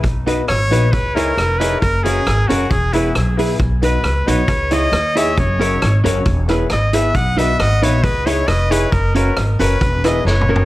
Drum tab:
HH |x--x--x--x--x--x--x--x--|x--x--x--x--x--x--x--o--|---x--x--x--x--x--x--x--|x--x--x--x--x--x--x--x--|
SD |------r-----------r-----|------r-----------r-----|------r-----------r-----|------r--------r--r-----|
T2 |------------------------|------------------------|------------------------|------------------------|
FT |------------------------|------------------------|------------------------|------------------------|
BD |o-----------o-----------|o-----------o-----------|o-----------o-----------|o-----------o-----------|

HH |x--x--x--x--x--x--x--x--|x--x--x--x--x--x--------|
SD |------r-----------r-----|------r--------r--o-----|
T2 |------------------------|--------------------o---|
FT |------------------------|----------------------o-|
BD |o-----------o-----------|o-----------o-----------|